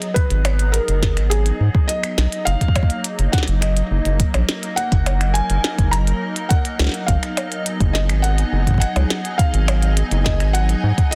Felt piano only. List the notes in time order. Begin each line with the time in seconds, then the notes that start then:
Already playing: D#5
0.14 B4
0.72 A#4
1.30 G#4
1.88 D#5
2.45 F5
3.32 F#5
3.61 D#5
4.76 F#5
5.34 G#5
5.91 A#5
6.49 F#5
7.06 F5
7.93 D#5
8.22 F#5
8.80 F#5
9.38 F5
10.24 D#5
10.53 F#5
11.11 D#5